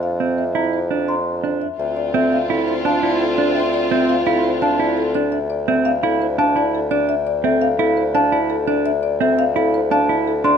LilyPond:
<<
  \new Staff \with { instrumentName = "Celesta" } { \time 5/4 \key bes \lydian \tempo 4 = 170 r4 e''8 r4. c'''8 r4. | \key d \minor r4 e''8 r8 f''8 r8 a''8 r4. | r4 e''8 r8 f''8 r8 a''8 r4. | r4 e''8 r8 f''8 r8 a''8 r4. |
r4 e''8 r8 f''8 r8 a''8 r4. | r4 e''8 r8 f''8 r8 a''8 r4 c'''8 | }
  \new Staff \with { instrumentName = "Marimba" } { \time 5/4 \key bes \lydian f''8 e''8 c''8 bes''8 c''8 d''8 bes''8 r8 c''8 e''8 | \key d \minor e''8 d''8 a'8 f''8 a'8 c''8 f''8 d''8 a'8 d''8 | e''8 d''8 a'8 f''8 a'8 c''8 f''8 d''8 a'8 d''8 | e''8 d''8 a'8 f''8 a'8 c''8 f''8 d''8 a'8 d''8 |
e''8 d''8 a'8 f''8 a'8 c''8 f''8 d''8 a'8 d''8 | e''8 d''8 a'8 f''8 a'8 c''8 f''8 d''8 a'8 d''8 | }
  \new Staff \with { instrumentName = "Clarinet" } { \time 5/4 \key bes \lydian r1 r4 | \key d \minor f'1~ f'4~ | f'1~ f'8 r8 | r1 r4 |
r1 r4 | r1 r4 | }
  \new Staff \with { instrumentName = "Violin section" } { \time 5/4 \key bes \lydian r1 r4 | \key d \minor <c' f'>1~ <c' f'>4~ | <c' f'>1~ <c' f'>8 r8 | r1 r4 |
r1 r4 | r1 r4 | }
  \new Staff \with { instrumentName = "Clean electric guitar" } { \time 5/4 \key bes \lydian r8 c'8 r8 e'8 r8 d'8 r4 d'8 r8 | \key d \minor r4 c'8 r8 e'8 r8 d'8 e'8 r8 d'8 | r4 c'8 r8 e'8 r8 d'8 e'8 r8 d'8 | r4 c'8 r8 e'8 r8 d'8 e'8 r8 d'8 |
r4 c'8 r8 e'8 r8 d'8 e'8 r8 d'8 | r4 c'8 r8 e'8 r8 d'8 e'8 r8 d'8 | }
  \new Staff \with { instrumentName = "Bassoon" } { \clef bass \time 5/4 \key bes \lydian f,1~ f,4 | \key d \minor d,1~ d,4~ | d,1~ d,4~ | d,1~ d,4~ |
d,1~ d,4~ | d,1~ d,4 | }
>>